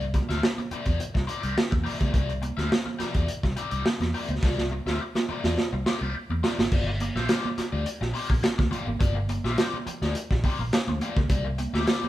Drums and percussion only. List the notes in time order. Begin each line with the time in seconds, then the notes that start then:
0.01 closed hi-hat
0.14 kick, closed hi-hat, muted conga, high conga
0.30 snare, closed hi-hat, high conga
0.42 snare, muted conga
0.58 closed hi-hat, high conga, low conga
0.71 closed hi-hat, muted conga, low conga
0.86 kick, closed hi-hat
1.00 closed hi-hat, muted conga
1.15 kick, snare
1.28 closed hi-hat, muted conga
1.43 closed hi-hat
1.58 snare
1.72 kick, closed hi-hat, high conga, low conga
1.86 open hi-hat
2.00 kick, closed hi-hat, high conga
2.14 kick, closed hi-hat
2.29 closed hi-hat
2.42 closed hi-hat, high conga
2.58 snare, closed hi-hat, high conga
2.72 snare
2.86 high conga, low conga
3.00 snare, closed hi-hat, muted conga, low conga
3.14 kick, closed hi-hat
3.28 closed hi-hat
3.43 kick, snare, closed hi-hat
3.57 closed hi-hat
3.71 closed hi-hat
3.85 snare, muted conga
4.00 snare, closed hi-hat, high conga, low conga
4.13 open hi-hat, muted conga
4.29 closed hi-hat, high conga
4.43 kick, snare
4.58 snare
4.70 high conga
4.86 snare, high conga
5.15 snare, high conga, low conga
5.29 muted conga, low conga
5.44 snare
5.58 snare, muted conga
5.86 snare, muted conga
6.15 muted conga
6.30 high conga, low conga
6.44 snare
6.59 snare, high conga
6.72 kick, crash, muted conga
7.00 closed hi-hat, muted conga, high conga
7.16 snare, high conga
7.29 snare, closed hi-hat, muted conga
7.44 high conga, low conga
7.58 snare, closed hi-hat, low conga
7.86 closed hi-hat
8.02 snare
8.15 open hi-hat, muted conga
8.30 kick
8.43 snare, closed hi-hat, muted conga
8.59 kick, snare, high conga, low conga
8.72 closed hi-hat, muted conga
8.88 high conga
9.00 kick, closed hi-hat
9.28 closed hi-hat, muted conga, high conga
9.45 snare, high conga
9.58 snare, closed hi-hat
9.73 high conga, low conga
9.87 closed hi-hat, muted conga, low conga
10.02 snare
10.15 closed hi-hat
10.31 kick, snare
10.44 kick, open hi-hat, muted conga
10.73 snare, closed hi-hat
10.88 high conga, low conga
11.01 closed hi-hat, muted conga
11.17 kick, high conga
11.29 kick, closed hi-hat, muted conga
11.58 closed hi-hat, muted conga, high conga
11.74 snare, high conga
11.87 snare, closed hi-hat
12.03 high conga, low conga